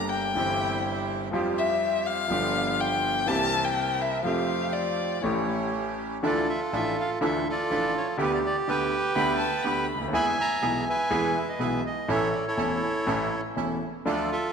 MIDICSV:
0, 0, Header, 1, 5, 480
1, 0, Start_track
1, 0, Key_signature, -1, "major"
1, 0, Tempo, 488599
1, 354, Time_signature, 4, 2, 24, 8
1, 6118, Key_signature, -1, "minor"
1, 11875, Tempo, 495050
1, 14239, End_track
2, 0, Start_track
2, 0, Title_t, "Violin"
2, 0, Program_c, 0, 40
2, 0, Note_on_c, 0, 82, 104
2, 92, Note_on_c, 0, 79, 92
2, 106, Note_off_c, 0, 82, 0
2, 1060, Note_off_c, 0, 79, 0
2, 1557, Note_on_c, 0, 76, 89
2, 2029, Note_on_c, 0, 77, 102
2, 2044, Note_off_c, 0, 76, 0
2, 2756, Note_on_c, 0, 79, 98
2, 2771, Note_off_c, 0, 77, 0
2, 3222, Note_on_c, 0, 81, 106
2, 3237, Note_off_c, 0, 79, 0
2, 3584, Note_on_c, 0, 79, 95
2, 3599, Note_off_c, 0, 81, 0
2, 3947, Note_on_c, 0, 76, 83
2, 3962, Note_off_c, 0, 79, 0
2, 4173, Note_off_c, 0, 76, 0
2, 4179, Note_on_c, 0, 77, 85
2, 4647, Note_on_c, 0, 74, 76
2, 4662, Note_off_c, 0, 77, 0
2, 5132, Note_on_c, 0, 73, 65
2, 5147, Note_off_c, 0, 74, 0
2, 5625, Note_off_c, 0, 73, 0
2, 8992, Note_on_c, 0, 83, 90
2, 9217, Note_off_c, 0, 83, 0
2, 9221, Note_on_c, 0, 81, 83
2, 9460, Note_on_c, 0, 83, 83
2, 9475, Note_off_c, 0, 81, 0
2, 9828, Note_off_c, 0, 83, 0
2, 14239, End_track
3, 0, Start_track
3, 0, Title_t, "Bandoneon"
3, 0, Program_c, 1, 23
3, 6150, Note_on_c, 1, 65, 53
3, 6152, Note_on_c, 1, 69, 54
3, 6156, Note_on_c, 1, 74, 74
3, 6364, Note_off_c, 1, 74, 0
3, 6382, Note_on_c, 1, 76, 67
3, 6486, Note_off_c, 1, 76, 0
3, 6639, Note_on_c, 1, 76, 74
3, 6847, Note_off_c, 1, 76, 0
3, 6878, Note_on_c, 1, 77, 73
3, 6978, Note_off_c, 1, 77, 0
3, 7062, Note_off_c, 1, 65, 0
3, 7063, Note_off_c, 1, 69, 0
3, 7116, Note_on_c, 1, 69, 59
3, 7123, Note_on_c, 1, 76, 81
3, 7345, Note_off_c, 1, 69, 0
3, 7350, Note_off_c, 1, 76, 0
3, 7359, Note_on_c, 1, 69, 60
3, 7367, Note_on_c, 1, 65, 60
3, 7378, Note_on_c, 1, 74, 84
3, 7801, Note_off_c, 1, 74, 0
3, 7833, Note_on_c, 1, 73, 72
3, 7935, Note_off_c, 1, 73, 0
3, 8023, Note_off_c, 1, 69, 0
3, 8027, Note_off_c, 1, 65, 0
3, 8069, Note_on_c, 1, 67, 59
3, 8083, Note_on_c, 1, 71, 82
3, 8177, Note_off_c, 1, 71, 0
3, 8194, Note_on_c, 1, 74, 76
3, 8241, Note_off_c, 1, 74, 0
3, 8313, Note_on_c, 1, 74, 78
3, 8414, Note_off_c, 1, 74, 0
3, 8538, Note_on_c, 1, 71, 62
3, 8555, Note_on_c, 1, 79, 88
3, 8973, Note_off_c, 1, 67, 0
3, 9684, Note_off_c, 1, 71, 0
3, 9693, Note_off_c, 1, 79, 0
3, 9963, Note_on_c, 1, 80, 74
3, 9968, Note_on_c, 1, 76, 70
3, 9976, Note_on_c, 1, 83, 98
3, 10079, Note_off_c, 1, 83, 0
3, 10196, Note_off_c, 1, 76, 0
3, 10211, Note_on_c, 1, 76, 66
3, 10227, Note_on_c, 1, 82, 93
3, 10657, Note_off_c, 1, 82, 0
3, 10681, Note_off_c, 1, 76, 0
3, 10696, Note_on_c, 1, 76, 67
3, 10697, Note_off_c, 1, 80, 0
3, 10701, Note_on_c, 1, 71, 70
3, 10712, Note_on_c, 1, 80, 94
3, 11161, Note_off_c, 1, 76, 0
3, 11175, Note_on_c, 1, 76, 77
3, 11186, Note_off_c, 1, 80, 0
3, 11284, Note_on_c, 1, 75, 72
3, 11287, Note_off_c, 1, 76, 0
3, 11401, Note_off_c, 1, 75, 0
3, 11416, Note_on_c, 1, 76, 80
3, 11605, Note_off_c, 1, 71, 0
3, 11627, Note_off_c, 1, 76, 0
3, 11656, Note_on_c, 1, 75, 81
3, 11890, Note_off_c, 1, 75, 0
3, 11895, Note_on_c, 1, 73, 62
3, 11898, Note_on_c, 1, 76, 80
3, 11902, Note_on_c, 1, 69, 60
3, 12078, Note_off_c, 1, 76, 0
3, 12104, Note_on_c, 1, 76, 55
3, 12118, Note_on_c, 1, 74, 65
3, 12124, Note_off_c, 1, 76, 0
3, 12224, Note_off_c, 1, 74, 0
3, 12234, Note_off_c, 1, 73, 0
3, 12242, Note_off_c, 1, 69, 0
3, 12249, Note_on_c, 1, 73, 69
3, 12257, Note_on_c, 1, 69, 53
3, 12258, Note_on_c, 1, 64, 50
3, 13156, Note_off_c, 1, 73, 0
3, 13160, Note_off_c, 1, 69, 0
3, 13161, Note_off_c, 1, 64, 0
3, 13809, Note_on_c, 1, 74, 76
3, 13813, Note_on_c, 1, 69, 54
3, 13816, Note_on_c, 1, 65, 60
3, 14023, Note_off_c, 1, 74, 0
3, 14034, Note_off_c, 1, 69, 0
3, 14041, Note_on_c, 1, 76, 78
3, 14048, Note_on_c, 1, 69, 57
3, 14239, Note_off_c, 1, 65, 0
3, 14239, Note_off_c, 1, 69, 0
3, 14239, Note_off_c, 1, 76, 0
3, 14239, End_track
4, 0, Start_track
4, 0, Title_t, "Bandoneon"
4, 0, Program_c, 2, 23
4, 0, Note_on_c, 2, 58, 61
4, 0, Note_on_c, 2, 62, 53
4, 0, Note_on_c, 2, 67, 65
4, 307, Note_off_c, 2, 58, 0
4, 308, Note_off_c, 2, 62, 0
4, 308, Note_off_c, 2, 67, 0
4, 353, Note_on_c, 2, 55, 67
4, 354, Note_on_c, 2, 64, 60
4, 357, Note_on_c, 2, 60, 62
4, 358, Note_on_c, 2, 67, 76
4, 1262, Note_off_c, 2, 55, 0
4, 1263, Note_off_c, 2, 64, 0
4, 1264, Note_off_c, 2, 60, 0
4, 1265, Note_off_c, 2, 67, 0
4, 1306, Note_on_c, 2, 60, 61
4, 1306, Note_on_c, 2, 65, 53
4, 1310, Note_on_c, 2, 67, 69
4, 2216, Note_off_c, 2, 60, 0
4, 2216, Note_off_c, 2, 65, 0
4, 2218, Note_off_c, 2, 67, 0
4, 2263, Note_on_c, 2, 59, 71
4, 2265, Note_on_c, 2, 67, 77
4, 2267, Note_on_c, 2, 65, 68
4, 3170, Note_off_c, 2, 59, 0
4, 3171, Note_off_c, 2, 67, 0
4, 3172, Note_off_c, 2, 65, 0
4, 3218, Note_on_c, 2, 60, 61
4, 3218, Note_on_c, 2, 64, 61
4, 3221, Note_on_c, 2, 70, 70
4, 4127, Note_off_c, 2, 64, 0
4, 4128, Note_off_c, 2, 60, 0
4, 4129, Note_off_c, 2, 70, 0
4, 4179, Note_on_c, 2, 57, 67
4, 4181, Note_on_c, 2, 65, 59
4, 4184, Note_on_c, 2, 67, 76
4, 5094, Note_off_c, 2, 57, 0
4, 5095, Note_off_c, 2, 65, 0
4, 5096, Note_off_c, 2, 67, 0
4, 5140, Note_on_c, 2, 61, 53
4, 5141, Note_on_c, 2, 57, 58
4, 5146, Note_on_c, 2, 67, 66
4, 6069, Note_off_c, 2, 61, 0
4, 6070, Note_off_c, 2, 57, 0
4, 6073, Note_off_c, 2, 67, 0
4, 6117, Note_on_c, 2, 53, 70
4, 6118, Note_on_c, 2, 62, 62
4, 6122, Note_on_c, 2, 64, 77
4, 6322, Note_off_c, 2, 53, 0
4, 6322, Note_off_c, 2, 62, 0
4, 6324, Note_off_c, 2, 64, 0
4, 6602, Note_on_c, 2, 53, 45
4, 6604, Note_on_c, 2, 62, 42
4, 6605, Note_on_c, 2, 64, 48
4, 6806, Note_off_c, 2, 53, 0
4, 6807, Note_off_c, 2, 62, 0
4, 6808, Note_off_c, 2, 64, 0
4, 7078, Note_on_c, 2, 53, 66
4, 7081, Note_on_c, 2, 62, 60
4, 7084, Note_on_c, 2, 64, 68
4, 7283, Note_off_c, 2, 53, 0
4, 7285, Note_off_c, 2, 62, 0
4, 7286, Note_off_c, 2, 64, 0
4, 7568, Note_on_c, 2, 53, 43
4, 7569, Note_on_c, 2, 62, 40
4, 7572, Note_on_c, 2, 64, 47
4, 7769, Note_off_c, 2, 53, 0
4, 7769, Note_off_c, 2, 62, 0
4, 7771, Note_off_c, 2, 64, 0
4, 8036, Note_on_c, 2, 57, 65
4, 8037, Note_on_c, 2, 50, 68
4, 8042, Note_on_c, 2, 59, 68
4, 8043, Note_on_c, 2, 67, 78
4, 8241, Note_off_c, 2, 57, 0
4, 8242, Note_off_c, 2, 50, 0
4, 8244, Note_off_c, 2, 59, 0
4, 8245, Note_off_c, 2, 67, 0
4, 8521, Note_on_c, 2, 57, 40
4, 8522, Note_on_c, 2, 50, 44
4, 8524, Note_on_c, 2, 59, 43
4, 8526, Note_on_c, 2, 67, 48
4, 8723, Note_off_c, 2, 50, 0
4, 8723, Note_off_c, 2, 57, 0
4, 8725, Note_off_c, 2, 59, 0
4, 8726, Note_off_c, 2, 67, 0
4, 8997, Note_on_c, 2, 50, 64
4, 8998, Note_on_c, 2, 57, 62
4, 9000, Note_on_c, 2, 67, 77
4, 9002, Note_on_c, 2, 59, 66
4, 9198, Note_off_c, 2, 50, 0
4, 9198, Note_off_c, 2, 57, 0
4, 9200, Note_off_c, 2, 59, 0
4, 9200, Note_off_c, 2, 67, 0
4, 9475, Note_on_c, 2, 57, 41
4, 9477, Note_on_c, 2, 50, 46
4, 9477, Note_on_c, 2, 59, 43
4, 9479, Note_on_c, 2, 67, 52
4, 9677, Note_off_c, 2, 57, 0
4, 9678, Note_off_c, 2, 50, 0
4, 9678, Note_off_c, 2, 59, 0
4, 9679, Note_off_c, 2, 67, 0
4, 9949, Note_on_c, 2, 59, 80
4, 9954, Note_on_c, 2, 68, 82
4, 9955, Note_on_c, 2, 64, 70
4, 10153, Note_off_c, 2, 59, 0
4, 10155, Note_off_c, 2, 68, 0
4, 10156, Note_off_c, 2, 64, 0
4, 10429, Note_on_c, 2, 59, 48
4, 10432, Note_on_c, 2, 64, 47
4, 10432, Note_on_c, 2, 68, 49
4, 10632, Note_off_c, 2, 59, 0
4, 10634, Note_off_c, 2, 64, 0
4, 10634, Note_off_c, 2, 68, 0
4, 10906, Note_on_c, 2, 59, 68
4, 10907, Note_on_c, 2, 64, 62
4, 10908, Note_on_c, 2, 68, 77
4, 11111, Note_off_c, 2, 59, 0
4, 11111, Note_off_c, 2, 64, 0
4, 11112, Note_off_c, 2, 68, 0
4, 11390, Note_on_c, 2, 59, 45
4, 11392, Note_on_c, 2, 64, 40
4, 11393, Note_on_c, 2, 68, 52
4, 11592, Note_off_c, 2, 59, 0
4, 11592, Note_off_c, 2, 64, 0
4, 11593, Note_off_c, 2, 68, 0
4, 11872, Note_on_c, 2, 61, 73
4, 11872, Note_on_c, 2, 64, 73
4, 11874, Note_on_c, 2, 69, 80
4, 12070, Note_off_c, 2, 61, 0
4, 12071, Note_off_c, 2, 64, 0
4, 12071, Note_off_c, 2, 69, 0
4, 12350, Note_on_c, 2, 61, 46
4, 12352, Note_on_c, 2, 64, 39
4, 12354, Note_on_c, 2, 69, 53
4, 12549, Note_off_c, 2, 61, 0
4, 12550, Note_off_c, 2, 64, 0
4, 12551, Note_off_c, 2, 69, 0
4, 12825, Note_on_c, 2, 61, 66
4, 12829, Note_on_c, 2, 64, 64
4, 12833, Note_on_c, 2, 69, 70
4, 13025, Note_off_c, 2, 61, 0
4, 13027, Note_off_c, 2, 64, 0
4, 13029, Note_off_c, 2, 69, 0
4, 13308, Note_on_c, 2, 61, 41
4, 13311, Note_on_c, 2, 64, 39
4, 13312, Note_on_c, 2, 69, 45
4, 13510, Note_off_c, 2, 61, 0
4, 13512, Note_off_c, 2, 64, 0
4, 13513, Note_off_c, 2, 69, 0
4, 13785, Note_on_c, 2, 62, 74
4, 13787, Note_on_c, 2, 65, 66
4, 13791, Note_on_c, 2, 69, 77
4, 13989, Note_off_c, 2, 62, 0
4, 13990, Note_off_c, 2, 65, 0
4, 13992, Note_off_c, 2, 69, 0
4, 14239, End_track
5, 0, Start_track
5, 0, Title_t, "Grand piano"
5, 0, Program_c, 3, 0
5, 0, Note_on_c, 3, 31, 68
5, 0, Note_on_c, 3, 43, 64
5, 0, Note_on_c, 3, 50, 53
5, 0, Note_on_c, 3, 55, 48
5, 0, Note_on_c, 3, 58, 51
5, 0, Note_on_c, 3, 67, 60
5, 293, Note_off_c, 3, 50, 0
5, 298, Note_off_c, 3, 55, 0
5, 301, Note_off_c, 3, 31, 0
5, 302, Note_off_c, 3, 43, 0
5, 305, Note_off_c, 3, 58, 0
5, 310, Note_off_c, 3, 67, 0
5, 333, Note_on_c, 3, 43, 50
5, 344, Note_on_c, 3, 52, 48
5, 348, Note_off_c, 3, 43, 0
5, 354, Note_on_c, 3, 43, 57
5, 354, Note_on_c, 3, 55, 48
5, 356, Note_on_c, 3, 31, 60
5, 364, Note_on_c, 3, 60, 45
5, 375, Note_on_c, 3, 67, 54
5, 1258, Note_off_c, 3, 52, 0
5, 1263, Note_off_c, 3, 43, 0
5, 1263, Note_off_c, 3, 55, 0
5, 1264, Note_off_c, 3, 31, 0
5, 1268, Note_off_c, 3, 60, 0
5, 1274, Note_off_c, 3, 67, 0
5, 1290, Note_on_c, 3, 53, 58
5, 1304, Note_on_c, 3, 55, 50
5, 1305, Note_off_c, 3, 53, 0
5, 1307, Note_on_c, 3, 41, 72
5, 1313, Note_on_c, 3, 53, 69
5, 1316, Note_on_c, 3, 60, 54
5, 1330, Note_on_c, 3, 67, 67
5, 2215, Note_off_c, 3, 55, 0
5, 2217, Note_off_c, 3, 41, 0
5, 2220, Note_off_c, 3, 53, 0
5, 2221, Note_off_c, 3, 60, 0
5, 2228, Note_off_c, 3, 67, 0
5, 2242, Note_on_c, 3, 53, 52
5, 2255, Note_on_c, 3, 59, 49
5, 2259, Note_on_c, 3, 31, 63
5, 2262, Note_on_c, 3, 43, 63
5, 2268, Note_on_c, 3, 62, 49
5, 2278, Note_on_c, 3, 67, 60
5, 3159, Note_off_c, 3, 53, 0
5, 3166, Note_off_c, 3, 59, 0
5, 3168, Note_off_c, 3, 31, 0
5, 3170, Note_off_c, 3, 43, 0
5, 3173, Note_off_c, 3, 62, 0
5, 3178, Note_off_c, 3, 67, 0
5, 3202, Note_on_c, 3, 52, 61
5, 3211, Note_on_c, 3, 58, 53
5, 3218, Note_on_c, 3, 36, 68
5, 3220, Note_on_c, 3, 48, 68
5, 3226, Note_on_c, 3, 60, 55
5, 3242, Note_on_c, 3, 67, 66
5, 4120, Note_off_c, 3, 52, 0
5, 4124, Note_off_c, 3, 58, 0
5, 4128, Note_off_c, 3, 36, 0
5, 4128, Note_off_c, 3, 48, 0
5, 4131, Note_off_c, 3, 60, 0
5, 4139, Note_off_c, 3, 67, 0
5, 4156, Note_on_c, 3, 53, 64
5, 4171, Note_on_c, 3, 57, 48
5, 4176, Note_on_c, 3, 41, 62
5, 4187, Note_on_c, 3, 60, 43
5, 4196, Note_on_c, 3, 67, 56
5, 5090, Note_off_c, 3, 57, 0
5, 5091, Note_off_c, 3, 53, 0
5, 5093, Note_off_c, 3, 41, 0
5, 5098, Note_off_c, 3, 60, 0
5, 5103, Note_off_c, 3, 67, 0
5, 5120, Note_on_c, 3, 52, 54
5, 5137, Note_on_c, 3, 57, 48
5, 5142, Note_on_c, 3, 33, 65
5, 5143, Note_on_c, 3, 45, 64
5, 5148, Note_on_c, 3, 61, 47
5, 5162, Note_on_c, 3, 67, 57
5, 6059, Note_off_c, 3, 52, 0
5, 6068, Note_off_c, 3, 57, 0
5, 6071, Note_off_c, 3, 33, 0
5, 6071, Note_off_c, 3, 45, 0
5, 6073, Note_off_c, 3, 61, 0
5, 6080, Note_off_c, 3, 67, 0
5, 6116, Note_on_c, 3, 52, 59
5, 6119, Note_on_c, 3, 57, 54
5, 6120, Note_on_c, 3, 62, 49
5, 6121, Note_on_c, 3, 38, 62
5, 6121, Note_on_c, 3, 50, 65
5, 6124, Note_on_c, 3, 65, 64
5, 6321, Note_off_c, 3, 52, 0
5, 6323, Note_off_c, 3, 57, 0
5, 6323, Note_off_c, 3, 62, 0
5, 6324, Note_off_c, 3, 38, 0
5, 6324, Note_off_c, 3, 50, 0
5, 6325, Note_off_c, 3, 65, 0
5, 6608, Note_on_c, 3, 33, 54
5, 6608, Note_on_c, 3, 52, 42
5, 6611, Note_on_c, 3, 57, 40
5, 6612, Note_on_c, 3, 45, 49
5, 6612, Note_on_c, 3, 65, 47
5, 6614, Note_on_c, 3, 62, 41
5, 6809, Note_off_c, 3, 33, 0
5, 6809, Note_off_c, 3, 52, 0
5, 6811, Note_off_c, 3, 45, 0
5, 6811, Note_off_c, 3, 57, 0
5, 6811, Note_off_c, 3, 65, 0
5, 6812, Note_off_c, 3, 62, 0
5, 7081, Note_on_c, 3, 50, 76
5, 7081, Note_on_c, 3, 57, 59
5, 7082, Note_on_c, 3, 52, 65
5, 7083, Note_on_c, 3, 38, 73
5, 7086, Note_on_c, 3, 62, 57
5, 7088, Note_on_c, 3, 65, 72
5, 7284, Note_off_c, 3, 50, 0
5, 7285, Note_off_c, 3, 38, 0
5, 7285, Note_off_c, 3, 52, 0
5, 7285, Note_off_c, 3, 57, 0
5, 7287, Note_off_c, 3, 62, 0
5, 7288, Note_off_c, 3, 65, 0
5, 7563, Note_on_c, 3, 52, 44
5, 7564, Note_on_c, 3, 57, 36
5, 7565, Note_on_c, 3, 65, 45
5, 7567, Note_on_c, 3, 62, 38
5, 7568, Note_on_c, 3, 33, 48
5, 7569, Note_on_c, 3, 45, 49
5, 7766, Note_off_c, 3, 52, 0
5, 7767, Note_off_c, 3, 57, 0
5, 7768, Note_off_c, 3, 62, 0
5, 7768, Note_off_c, 3, 65, 0
5, 7769, Note_off_c, 3, 33, 0
5, 7769, Note_off_c, 3, 45, 0
5, 8031, Note_on_c, 3, 50, 75
5, 8033, Note_on_c, 3, 59, 58
5, 8034, Note_on_c, 3, 57, 57
5, 8037, Note_on_c, 3, 38, 75
5, 8040, Note_on_c, 3, 67, 65
5, 8240, Note_off_c, 3, 57, 0
5, 8240, Note_off_c, 3, 59, 0
5, 8242, Note_off_c, 3, 38, 0
5, 8242, Note_off_c, 3, 50, 0
5, 8243, Note_off_c, 3, 67, 0
5, 8521, Note_on_c, 3, 57, 39
5, 8524, Note_on_c, 3, 50, 51
5, 8526, Note_on_c, 3, 59, 41
5, 8527, Note_on_c, 3, 38, 56
5, 8529, Note_on_c, 3, 67, 53
5, 8723, Note_off_c, 3, 57, 0
5, 8726, Note_off_c, 3, 38, 0
5, 8726, Note_off_c, 3, 50, 0
5, 8726, Note_off_c, 3, 59, 0
5, 8727, Note_off_c, 3, 67, 0
5, 8992, Note_on_c, 3, 57, 64
5, 8993, Note_on_c, 3, 38, 78
5, 8994, Note_on_c, 3, 50, 79
5, 8995, Note_on_c, 3, 59, 63
5, 8998, Note_on_c, 3, 67, 77
5, 9196, Note_off_c, 3, 38, 0
5, 9196, Note_off_c, 3, 57, 0
5, 9197, Note_off_c, 3, 50, 0
5, 9197, Note_off_c, 3, 59, 0
5, 9198, Note_off_c, 3, 67, 0
5, 9471, Note_on_c, 3, 50, 52
5, 9471, Note_on_c, 3, 57, 41
5, 9473, Note_on_c, 3, 38, 50
5, 9476, Note_on_c, 3, 59, 36
5, 9477, Note_on_c, 3, 67, 47
5, 9675, Note_off_c, 3, 50, 0
5, 9675, Note_off_c, 3, 57, 0
5, 9676, Note_off_c, 3, 38, 0
5, 9678, Note_off_c, 3, 59, 0
5, 9678, Note_off_c, 3, 67, 0
5, 9776, Note_on_c, 3, 37, 47
5, 9836, Note_off_c, 3, 37, 0
5, 9836, Note_on_c, 3, 38, 56
5, 9896, Note_off_c, 3, 38, 0
5, 9898, Note_on_c, 3, 39, 69
5, 9952, Note_on_c, 3, 40, 78
5, 9953, Note_on_c, 3, 52, 68
5, 9953, Note_on_c, 3, 56, 55
5, 9956, Note_on_c, 3, 59, 57
5, 9956, Note_on_c, 3, 68, 71
5, 9957, Note_off_c, 3, 39, 0
5, 10155, Note_off_c, 3, 40, 0
5, 10155, Note_off_c, 3, 56, 0
5, 10156, Note_off_c, 3, 52, 0
5, 10157, Note_off_c, 3, 59, 0
5, 10157, Note_off_c, 3, 68, 0
5, 10434, Note_on_c, 3, 52, 47
5, 10434, Note_on_c, 3, 59, 42
5, 10435, Note_on_c, 3, 35, 52
5, 10436, Note_on_c, 3, 56, 41
5, 10437, Note_on_c, 3, 47, 56
5, 10441, Note_on_c, 3, 68, 51
5, 10635, Note_off_c, 3, 35, 0
5, 10635, Note_off_c, 3, 52, 0
5, 10635, Note_off_c, 3, 59, 0
5, 10636, Note_off_c, 3, 47, 0
5, 10636, Note_off_c, 3, 56, 0
5, 10638, Note_off_c, 3, 68, 0
5, 10908, Note_on_c, 3, 52, 86
5, 10910, Note_on_c, 3, 56, 66
5, 10912, Note_on_c, 3, 68, 83
5, 10914, Note_on_c, 3, 40, 87
5, 10914, Note_on_c, 3, 59, 61
5, 11112, Note_off_c, 3, 56, 0
5, 11114, Note_off_c, 3, 52, 0
5, 11114, Note_off_c, 3, 68, 0
5, 11115, Note_off_c, 3, 40, 0
5, 11115, Note_off_c, 3, 59, 0
5, 11385, Note_on_c, 3, 47, 54
5, 11385, Note_on_c, 3, 56, 39
5, 11386, Note_on_c, 3, 52, 42
5, 11388, Note_on_c, 3, 59, 39
5, 11390, Note_on_c, 3, 35, 49
5, 11390, Note_on_c, 3, 68, 48
5, 11589, Note_off_c, 3, 47, 0
5, 11589, Note_off_c, 3, 56, 0
5, 11590, Note_off_c, 3, 52, 0
5, 11590, Note_off_c, 3, 59, 0
5, 11591, Note_off_c, 3, 35, 0
5, 11592, Note_off_c, 3, 68, 0
5, 11869, Note_on_c, 3, 45, 68
5, 11869, Note_on_c, 3, 57, 56
5, 11871, Note_on_c, 3, 52, 62
5, 11872, Note_on_c, 3, 33, 70
5, 11874, Note_on_c, 3, 69, 69
5, 11875, Note_on_c, 3, 61, 57
5, 12069, Note_off_c, 3, 45, 0
5, 12069, Note_off_c, 3, 57, 0
5, 12070, Note_off_c, 3, 33, 0
5, 12070, Note_off_c, 3, 52, 0
5, 12071, Note_off_c, 3, 69, 0
5, 12072, Note_off_c, 3, 61, 0
5, 12343, Note_on_c, 3, 52, 48
5, 12343, Note_on_c, 3, 57, 41
5, 12344, Note_on_c, 3, 40, 49
5, 12346, Note_on_c, 3, 61, 43
5, 12347, Note_on_c, 3, 28, 53
5, 12350, Note_on_c, 3, 69, 49
5, 12545, Note_off_c, 3, 52, 0
5, 12545, Note_off_c, 3, 57, 0
5, 12546, Note_off_c, 3, 40, 0
5, 12547, Note_off_c, 3, 28, 0
5, 12547, Note_off_c, 3, 61, 0
5, 12549, Note_off_c, 3, 69, 0
5, 12818, Note_on_c, 3, 57, 60
5, 12819, Note_on_c, 3, 52, 61
5, 12823, Note_on_c, 3, 45, 77
5, 12824, Note_on_c, 3, 33, 75
5, 12824, Note_on_c, 3, 61, 61
5, 12828, Note_on_c, 3, 69, 70
5, 13022, Note_off_c, 3, 52, 0
5, 13022, Note_off_c, 3, 57, 0
5, 13024, Note_off_c, 3, 45, 0
5, 13025, Note_off_c, 3, 33, 0
5, 13025, Note_off_c, 3, 61, 0
5, 13027, Note_off_c, 3, 69, 0
5, 13302, Note_on_c, 3, 52, 39
5, 13304, Note_on_c, 3, 28, 47
5, 13304, Note_on_c, 3, 57, 34
5, 13305, Note_on_c, 3, 40, 43
5, 13307, Note_on_c, 3, 61, 36
5, 13309, Note_on_c, 3, 69, 44
5, 13507, Note_off_c, 3, 52, 0
5, 13509, Note_off_c, 3, 28, 0
5, 13509, Note_off_c, 3, 40, 0
5, 13509, Note_off_c, 3, 57, 0
5, 13510, Note_off_c, 3, 61, 0
5, 13511, Note_off_c, 3, 69, 0
5, 13781, Note_on_c, 3, 57, 54
5, 13783, Note_on_c, 3, 50, 69
5, 13783, Note_on_c, 3, 53, 62
5, 13784, Note_on_c, 3, 38, 69
5, 13786, Note_on_c, 3, 62, 54
5, 13789, Note_on_c, 3, 69, 64
5, 13987, Note_off_c, 3, 57, 0
5, 13988, Note_off_c, 3, 38, 0
5, 13988, Note_off_c, 3, 50, 0
5, 13988, Note_off_c, 3, 53, 0
5, 13989, Note_off_c, 3, 62, 0
5, 13991, Note_off_c, 3, 69, 0
5, 14239, End_track
0, 0, End_of_file